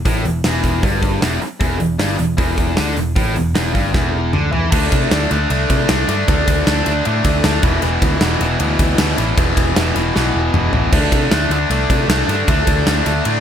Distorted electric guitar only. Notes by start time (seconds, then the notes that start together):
0.06 A2
0.25 E2
0.45 E2
0.84 G2
1.22 E2
1.41 muted distorted electric guitar stroke
1.60 E2
1.80 E2
1.99 G2
2.18 E2
2.37 E2
2.76 D3
2.96 E2
3.16 A2
3.36 E2
3.55 E2
3.74 G2
3.94 E2
4.33 D3
4.52 E3
4.72 D3 A3 D4
5.11 D3 A3 D4
5.31 D3 A3 D4
5.50 D3 A3 D4
5.89 D3 A3 D4
6.08 D3 A3 D4
6.28 D3 A3 D4
6.66 D3 A3 D4
6.86 D3 A3 D4
7.05 D3 A3 D4
7.44 D3 A3 D4
7.63 E2 B2 E3
7.83 E2 B2 E3
8.21 E2 B2 E3
8.40 E2 B2 E3
8.59 E2 B2 E3
8.99 E2 B2 E3
9.17 E2 B2 E3
9.36 E2 B2 E3
9.76 E2 B2 E3
9.95 E2 B2 E3
10.14 E2 B2 E3
10.54 E2 B2 E3
10.73 E2 B2 E3
10.92 D3 A3 D4
11.32 D3 A3 D4
11.51 D3 A3 D4
11.70 D3 A3 D4
12.09 D3 A3 D4
12.29 D3 A3 D4
12.48 D3 A3 D4
12.86 D3 A3 D4
13.05 D3 A3 D4
13.25 D3 A3 D4